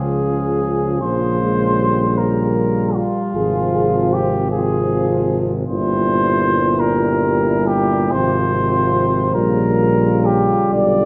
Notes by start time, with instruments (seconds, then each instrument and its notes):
Already playing: tuba C#2, trombone C#3, trombone section F3, french horn section F4, flugelhorn G#4
1.01 tuba A#1, trombone C#3, trombone section F3, french horn section F4, flugelhorn C5
1.41 trombone section G#3
1.80 trombone section G3
2.18 french horn section F4, flugelhorn A#4
2.96 flugelhorn F4
3.35 tuba G#1, trombone C3, trombone section F3, french horn section G#4
3.74 french horn section G#4
4.13 french horn section F4, flugelhorn G4
4.51 trombone C3, trombone section F3, french horn section F4, flugelhorn G#4
5.67 tuba G1, trombone A#2, trombone section G3, french horn section E4, flugelhorn C5
6.80 flugelhorn A#4
7.67 flugelhorn G4
8.12 tuba G#1, trombone C3, trombone section F3, french horn section F4, flugelhorn C5
9.34 tuba A#1, trombone C#3, trombone section G3, flugelhorn A#4
10.26 flugelhorn G4
10.72 tuba B1, trombone D3, flugelhorn D5